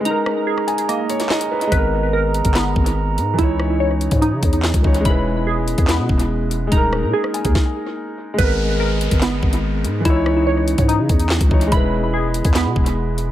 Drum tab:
HH |x-----xxx-xx-x-x|x-----xxx--x--x-|x-----xxx-xx-x-x|x-----xxx--x--x-|
CP |------------x---|--------x-------|------------x---|--------x-------|
SD |--r--r-----oo---|--------o-------|--r---------o---|--------o-------|
BD |----------------|o------o--o-----|o------o--o--oo-|o------o--o-----|

HH |x-----xx--------|x-----xxx--x--x-|x-----xxx-xx-x-x|x-----xxx--x--x-|
CP |----------------|--------x-------|------------x---|--------x-------|
SD |--r--r--o-------|--------o-------|--r---------o---|--------o-------|
BD |o------oo-------|o------o--o-----|o------o--o--oo-|o------o--o-----|